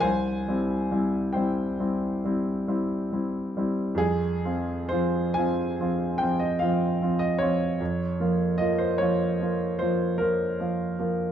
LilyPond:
\new Staff \with { instrumentName = "Grand piano" } { \time 9/8 \key c \phrygian \tempo 4. = 49 << { <c'' aes''>4. <c'' g''>4. r4. | aes'4 c''8 aes''4 g''16 ees''16 f''8. ees''16 des''8~ | des''4 ees''16 c''16 des''4 c''8 bes'4. | } \\ { c,8 <g c' e'>8 <g c' e'>8 <g c' e'>8 <g c' e'>8 <g c' e'>8 <g c' e'>8 <g c' e'>8 <g c' e'>8 | f,8 <f c' f'>8 <f c' f'>8 <f c' f'>8 <f c' f'>8 <f c' f'>8 <f c' f'>8 <f c' f'>8 <f c' f'>8 | f,8 <f bes f'>8 <f bes f'>8 <f bes f'>8 <f bes f'>8 <f bes f'>8 <f bes f'>8 <f bes f'>8 <f bes f'>8 | } >> }